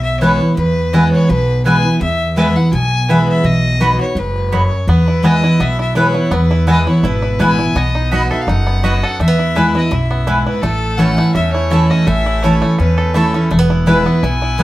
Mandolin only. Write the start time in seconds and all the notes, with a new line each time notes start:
0.21 B3 E4 B4 G#5
0.93 B3 E4 B4 G#5
1.65 B3 E4 B4 G#5
2.37 B3 E4 B4 G#5
3.08 B3 E4 B4 G#5
3.80 B3 F#4 D#5 B5
4.52 B3 F#4 D#5 B5
5.23 B3 E4 B4 G#5
5.96 B3 E4 B4 G#5
6.67 B3 E4 B4 G#5
7.39 B3 E4 B4 G#5
8.11 B3 F#4 D#5 B5
8.83 B3 F#4 D#5 B5
9.56 B3 E4 B4 G#5
10.27 B3 E4 B4 G#5
10.99 A3 E4 C#5 A5
11.70 A3 E4 C#5 A5
12.43 A3 E4 C#5 A5
13.14 A3 E4 C#5 A5
13.87 B3 E4 B4 G#5
14.59 B3 E4 B4 G#5